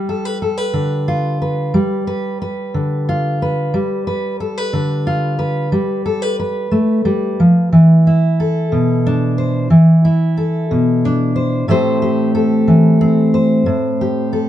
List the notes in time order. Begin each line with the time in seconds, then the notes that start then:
Already playing: G3
0.09 A4
0.25 B4
0.42 A4
0.57 B4
0.73 D3
1.08 F4
1.42 B4
1.74 G3
2.07 B4
2.42 B4
2.74 D3
3.09 F4
3.42 B4
3.74 G3
4.07 B4
4.40 A4
4.58 B4
4.73 D3
5.07 F4
5.39 B4
5.72 G3
6.06 A4
6.22 B4
6.39 B4
6.71 A3
7.05 G3
7.40 F3
7.72 E3
8.07 E4
8.40 A4
8.72 B2
9.07 D4
9.38 C5
9.70 E3
10.05 E4
10.37 A4
10.71 B2
11.05 D4
11.36 C5
11.68 A2 A3 C4 G4 C5
12.02 G4
12.35 A4
12.68 E3
13.01 C4
13.34 C5
13.66 A2
14.01 G4
14.33 A4